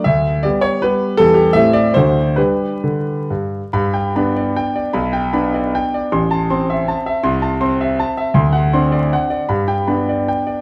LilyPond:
<<
  \new Staff \with { instrumentName = "Grand piano" } { \time 3/4 \key g \lydian \tempo 4 = 154 e''4 d''8 cis''8 b'4 | \key g \major a'8 g'8 e''8 d''8 c''4 | b'2 r4 | b''8 g''8 b''8 d''8 g''8 d''8 |
b''8 g''8 b''8 d''8 g''8 d''8 | c'''8 a''8 c'''8 e''8 a''8 e''8 | c'''8 a''8 c'''8 e''8 a''8 e''8 | c'''8 fis''8 c'''8 d''8 fis''8 d''8 |
b''8 g''8 b''8 d''8 g''8 d''8 | }
  \new Staff \with { instrumentName = "Grand piano" } { \time 3/4 \key g \lydian d,4 <g b g'>4 <g b g'>4 | \key g \major <e, g b g'>4 <a, a c' g'>4 <d, a d' fis'>4 | <g d' g'>4 d4 g,4 | g,4 <b d'>2 |
b,,4 <b d'>2 | a,,4 c'2 | c,4 c'2 | d,4 <c' d'>2 |
g,4 <b d'>2 | }
>>